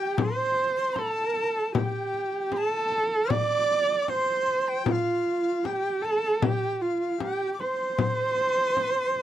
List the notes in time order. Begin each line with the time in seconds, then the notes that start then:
Already playing: G4 G5
0.18 C5 D6, frame drum
0.22 C6
0.76 C6
0.96 A4 A5, frame drum
1.36 frame drum
1.74 G4 G5, frame drum
2.14 frame drum
2.52 A4 C6, frame drum
2.57 A5
2.91 frame drum
3.24 F6
3.30 D5 D6, frame drum
4.02 D6
4.08 C5 C6, frame drum
4.47 frame drum
4.68 G5
4.86 F4 G5, frame drum
4.92 F5
5.26 frame drum
5.63 G4 G5, frame drum
6.02 A4 A5, frame drum
6.42 G4 G5, frame drum
6.81 F4 F5
7.20 G4 G5, frame drum
7.53 D6
7.59 C5 C6, frame drum
7.99 frame drum
8.38 frame drum
8.77 frame drum
9.16 frame drum